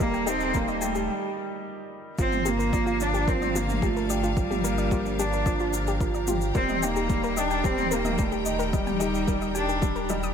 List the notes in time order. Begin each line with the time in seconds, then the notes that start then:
Already playing: D#1 D#3 D#4 G4 A#4 D#5
0.00 G3 A#3 A4, kick, shaker
0.14 G5, shaker
0.26 C4 D#4 G4, shaker
0.40 shaker
0.54 G3 A#3 A#4, kick, shaker
0.68 D#5, shaker
0.81 A3 G4 G5, shaker
0.95 G4, shaker
1.11 G3
2.17 G1 F3 C4 D4 F4 G4 F5 A#5, kick, shaker
2.32 mid tom, shaker
2.45 A#3 G4, shaker
2.59 A#4, shaker
2.73 F3 D5, kick, shaker
2.86 F4, shaker
3.00 D4, shaker
3.14 G4, shaker
3.28 F3 C4 A#4, kick, shaker
3.42 D5, mid tom, shaker
3.55 A#3 F4, shaker
3.69 mid tom, shaker
3.82 F3 A3 G4, kick, shaker
3.97 A#4, shaker
4.09 G4 D5, shaker
4.24 F4, shaker
4.36 F3 G3, kick, shaker
4.51 G4, mid tom, shaker
4.64 A#3 A#4, shaker
4.78 D5, shaker
4.91 F3 F4, kick, shaker
5.06 shaker
5.19 D4 G4, shaker
5.33 A#4, shaker
5.46 F3 D5, kick, shaker
5.60 F4, shaker
5.73 F4, shaker
5.87 G4, shaker
6.00 F3 A#4, kick, shaker
6.14 D5, shaker
6.27 F4 G4, mid tom, shaker
6.41 shaker
6.54 D#1 D#3 G3 C4 A#4 G5, kick, shaker
6.69 D#5, mid tom, shaker
6.82 A#3 D#4 G5, shaker
6.96 G4, shaker
7.09 G3, kick, shaker
7.23 A#4, shaker
7.36 D4 G4 D#5, shaker
7.51 G5, shaker
7.64 G3 C4 G4, kick, shaker
7.78 mid tom, shaker
7.91 A#3 A#4, shaker
8.05 D#5, mid tom, shaker
8.18 G3 A3 G5, kick, shaker
8.32 G4, shaker
8.45 D#5, shaker
8.59 A#4, shaker
8.73 G3 D#5, kick, shaker
8.87 G5, mid tom, shaker
9.00 D#4 G4, shaker
9.15 shaker
9.27 G3 A#4, kick, shaker
9.41 D#5, shaker
9.54 D4 G4 G5, shaker
9.69 G4, shaker
9.81 G3, kick, shaker
9.96 A#4, shaker
10.09 G3 D#5, shaker
10.23 D#6, shaker